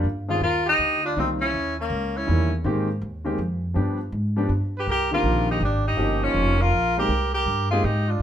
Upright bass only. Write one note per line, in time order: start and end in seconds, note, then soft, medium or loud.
0.04 0.40 G2 medium
0.41 0.78 D#2 medium
0.79 1.15 D2 medium
1.16 1.52 C2 medium
1.53 1.89 D#2 medium
1.90 2.26 C#2 medium
2.29 2.64 E2 medium
2.64 3.00 G#2 medium
3.02 3.38 D#2 medium
3.38 3.75 F2 medium
3.76 4.12 G2 medium
4.12 4.48 G#2 medium
4.49 4.85 G2 medium
4.87 5.23 C2 medium
5.23 5.60 A#1 medium
5.60 5.96 G#1 medium
5.97 6.33 G1 medium
6.34 6.71 F1 medium
6.71 7.08 A#1 medium
7.08 7.45 C2 medium
7.46 7.82 G2 medium
7.84 8.20 G#2 medium